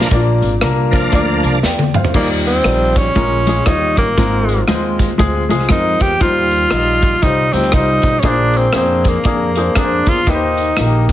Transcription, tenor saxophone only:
2.15 A#3
2.47 C4
2.98 C#4
3.66 D#4
3.98 A#3
5.71 D#4
6.01 G4
6.22 F4
7.22 D#4
7.53 C4
7.74 D#4
8.19 C#4
8.26 D4
8.58 C4
8.77 C4
9.08 A#3
9.78 D4
10.08 F4
10.30 D#4

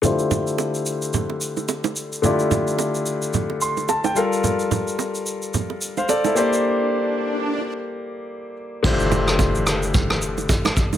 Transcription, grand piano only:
0.02 D3 A3 E4 F4 G4 C5
2.22 D3 A3 E4 F4 G4 D5
3.61 C6
3.89 A5
4.05 G5
4.15 G3 F4 A4 A#4 F5
5.98 C5 F5
6.09 A4 D5
6.25 E4 A4
6.35 A#3 G4 C5 D5
8.83 D3 A3 E4 F4 G4 C5

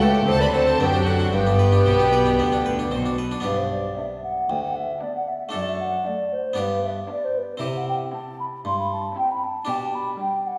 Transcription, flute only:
0.01 B4
0.27 C5
0.41 D5
0.53 C5
0.80 B4
1.06 A4
1.33 B4
3.44 B4
3.57 C5
3.71 D5
3.97 E5
4.23 F#5
4.49 G5
4.63 F#5
4.76 E5
5.02 D5
5.16 F#5
5.28 E5
5.54 D5
5.68 E5
5.80 F#5
6.06 D5
6.32 C5
6.58 B4
6.84 E5
7.11 D5
7.24 C5
7.37 B4
7.63 E5
7.76 F#5
7.89 G5
8.14 A5
8.40 B5
8.66 C6
8.79 B5
8.91 A5
9.18 G5
9.31 B5
9.44 A5
9.69 G5
9.82 A5
9.95 B5
10.20 G5
10.46 F#5

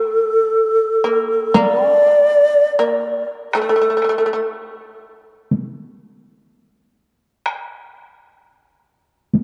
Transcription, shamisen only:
Already playing: A3
1.04 A#3
1.54 A#3
1.92 D4
2.79 A#3
3.55 A3
3.62 A3
3.69 A3
3.76 A3
3.82 A3
3.90 A3
3.97 A3
4.04 A3
4.09 A3
4.18 A3
4.26 A3
4.33 A3

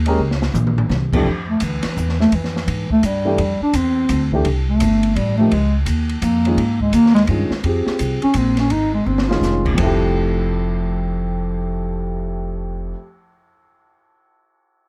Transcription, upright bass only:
Already playing: D#2
0.18 C#2
0.54 A#1
0.89 C2
1.26 F2
1.61 D2
1.84 muted upright bass stroke
1.97 E2
2.32 F2
2.67 G#2
2.90 muted upright bass stroke
3.03 G2
3.38 F2
3.61 muted upright bass stroke
3.73 E2
4.09 D2
4.44 C2
4.81 G1
5.15 A1
5.52 C#2
5.86 D#2
6.22 F2
6.57 G#2
6.92 D#2
7.28 G2
7.51 muted upright bass stroke
7.64 F2
7.87 muted upright bass stroke
8.00 C2
8.24 muted upright bass stroke
8.35 A#1
8.71 G#1
9.06 G1
9.41 F1
9.77 F1

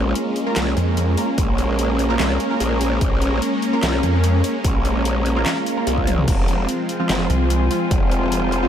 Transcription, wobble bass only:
Already playing: A#1
0.56 C2
1.38 A#1
2.20 C2
2.60 A#1
3.01 A#1
3.83 C2
4.65 A#1
5.87 C2
6.28 F1
7.09 F#1
7.91 F1

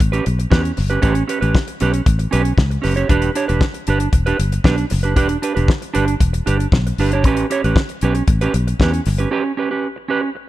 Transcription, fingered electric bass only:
0.01 A1
0.27 B1
0.52 E2
0.78 G1
1.03 A1
1.42 A1
1.82 B1
2.07 A1
2.33 B1
2.58 C#2
2.85 F#1
3.10 E1
3.49 E1
3.88 G1
4.13 E1
4.39 G1
4.65 B1
4.92 F#1
5.17 E1
5.57 E1
5.96 G1
6.21 E1
6.47 G1
6.72 B1
6.98 G1
7.25 A1
7.64 A1
8.03 B1
8.28 A1
8.54 B1
8.80 E2
9.07 G1

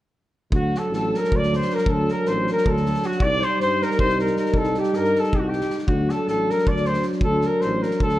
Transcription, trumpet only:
0.55 F#4
0.78 A4
0.95 A4
1.16 A#4
1.36 D5
1.55 C5
1.75 A#4
1.89 A4
2.11 A#4
2.27 C5
2.52 A#4
2.70 A4
3.06 F#4
3.23 D5
3.44 C5
3.61 C5
3.82 A#4
4.00 C5
4.20 A#4
4.39 A#4
4.57 A4
4.80 G4
4.95 A#4
5.19 A4
5.36 G4
5.40 F#4
5.49 G4
5.87 F#4
6.10 A4
6.29 A4
6.51 A#4
6.68 D5
6.86 C5
7.24 A4
7.46 A#4
7.61 C5
7.82 A#4
8.02 A4

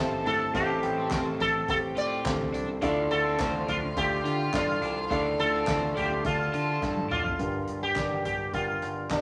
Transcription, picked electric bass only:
Already playing: A1
0.25 G1
0.54 A1
0.83 A1
1.12 A1
1.39 A1
1.69 A1
1.97 A2
2.26 D2
2.54 C2
2.83 D2
3.11 D2
3.40 D2
3.68 D2
3.97 D2
4.25 D3
4.54 G2
4.82 C2
5.11 D2
5.39 D2
5.68 D2
5.97 D2
6.25 D2
6.54 D3
6.82 G2
7.11 F1
7.39 G1
7.68 G1
7.96 G1
8.24 G1
8.53 G1
8.82 G1
9.10 G1

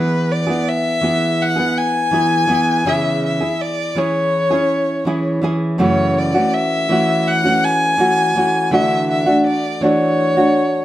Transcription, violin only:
Already playing: B4
0.32 D5
0.68 E5
1.42 F#5
1.78 G#5
2.89 E5
3.26 E5
3.61 D5
3.98 C#5
5.82 C#5
6.18 D5
6.54 E5
7.28 F#5
7.65 G#5
8.74 E5
9.11 E5
9.47 D5
9.82 C#5

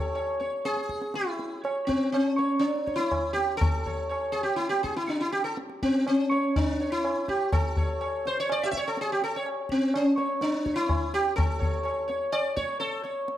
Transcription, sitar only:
Already playing: A4 C#5
0.15 C#5
0.40 C#5
0.65 G#4
1.15 E4
1.64 C#5
1.87 C4
2.12 C4
2.24 C#4
2.38 C#5
2.59 C#4
2.71 D4
2.86 C#5
2.96 E4
3.33 G4
3.57 A4
3.86 C#5
4.09 C#5
4.32 G#4
4.43 G4
4.56 E4
4.69 G4
4.83 G#4
4.97 E4
5.09 D4
5.21 E4
5.32 G4
5.44 A4
5.83 C4
6.07 C4
6.18 C#4
6.31 C#5
6.56 D4
6.80 C#5
6.92 E4
7.29 G4
7.53 A4
7.77 C#5
8.01 C#5
8.27 C5
8.40 C#5
8.52 D5
8.63 G4 E5
8.71 E5
8.77 C#5
8.88 A4
9.01 G#4
9.12 G4
9.24 A4
9.36 C#5
9.72 C4
9.95 C#4
10.18 C#5
10.42 D4
10.65 C#5
10.76 E4
11.14 G4
11.36 A4
11.59 C#5
11.83 C#5
12.08 C#5
12.32 D5
12.56 C#5
12.80 A4
13.03 C#5

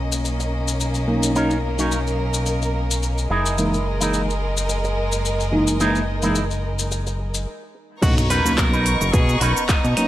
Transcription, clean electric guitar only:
0.24 muted clean electric guitar stroke
0.40 muted clean electric guitar stroke
0.52 muted clean electric guitar stroke
1.08 muted clean electric guitar stroke
1.35 C#4 D#4 A#4
1.79 C#4 D#4 C#5
2.19 muted clean electric guitar stroke
2.47 muted clean electric guitar stroke
2.62 muted clean electric guitar stroke
2.74 muted clean electric guitar stroke
3.30 D#4 E4 G#4 A#4
4.01 D#4 E4 G#4 A#4
4.41 muted clean electric guitar stroke
4.69 muted clean electric guitar stroke
4.84 muted clean electric guitar stroke
4.96 muted clean electric guitar stroke
5.52 muted clean electric guitar stroke
5.80 D#4 E4 G#4 A#4
6.23 D#4 E4 G#4 A#4
6.64 muted clean electric guitar stroke
6.91 muted clean electric guitar stroke
7.07 muted clean electric guitar stroke
7.19 muted clean electric guitar stroke
7.75 muted clean electric guitar stroke
8.30 C#4 D#4 A#4 B4
8.73 C#4 D#4 A#4 B4
9.41 C#4 D#4 A#4 B4
9.84 muted clean electric guitar stroke

